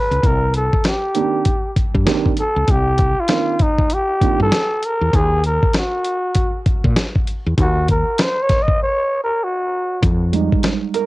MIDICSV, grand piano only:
0, 0, Header, 1, 2, 480
1, 0, Start_track
1, 0, Tempo, 612245
1, 180, Time_signature, 4, 2, 24, 8
1, 8671, End_track
2, 0, Start_track
2, 0, Title_t, "Grand piano"
2, 0, Program_c, 0, 0
2, 898, Note_on_c, 0, 51, 71
2, 901, Note_on_c, 0, 58, 67
2, 906, Note_on_c, 0, 60, 70
2, 909, Note_on_c, 0, 62, 69
2, 911, Note_on_c, 0, 67, 79
2, 1084, Note_off_c, 0, 51, 0
2, 1085, Note_off_c, 0, 58, 0
2, 1088, Note_off_c, 0, 60, 0
2, 1089, Note_off_c, 0, 62, 0
2, 1091, Note_off_c, 0, 67, 0
2, 1611, Note_on_c, 0, 51, 83
2, 1614, Note_on_c, 0, 58, 75
2, 1618, Note_on_c, 0, 60, 72
2, 1621, Note_on_c, 0, 62, 80
2, 1626, Note_on_c, 0, 67, 84
2, 1801, Note_off_c, 0, 51, 0
2, 1802, Note_off_c, 0, 58, 0
2, 1804, Note_off_c, 0, 60, 0
2, 1806, Note_off_c, 0, 62, 0
2, 1808, Note_off_c, 0, 67, 0
2, 2572, Note_on_c, 0, 51, 58
2, 2576, Note_on_c, 0, 58, 48
2, 2580, Note_on_c, 0, 60, 51
2, 2582, Note_on_c, 0, 62, 55
2, 2587, Note_on_c, 0, 70, 64
2, 2761, Note_off_c, 0, 51, 0
2, 2763, Note_off_c, 0, 58, 0
2, 2765, Note_off_c, 0, 60, 0
2, 2766, Note_off_c, 0, 62, 0
2, 2768, Note_off_c, 0, 70, 0
2, 3298, Note_on_c, 0, 51, 64
2, 3301, Note_on_c, 0, 58, 55
2, 3305, Note_on_c, 0, 60, 54
2, 3309, Note_on_c, 0, 62, 62
2, 3313, Note_on_c, 0, 65, 70
2, 3484, Note_off_c, 0, 51, 0
2, 3485, Note_off_c, 0, 58, 0
2, 3488, Note_off_c, 0, 60, 0
2, 3490, Note_off_c, 0, 62, 0
2, 3491, Note_off_c, 0, 65, 0
2, 8095, Note_on_c, 0, 55, 52
2, 8099, Note_on_c, 0, 56, 48
2, 8104, Note_on_c, 0, 63, 62
2, 8579, Note_on_c, 0, 70, 93
2, 8671, Note_off_c, 0, 55, 0
2, 8671, Note_off_c, 0, 56, 0
2, 8671, Note_off_c, 0, 63, 0
2, 8671, Note_off_c, 0, 70, 0
2, 8671, End_track
0, 0, End_of_file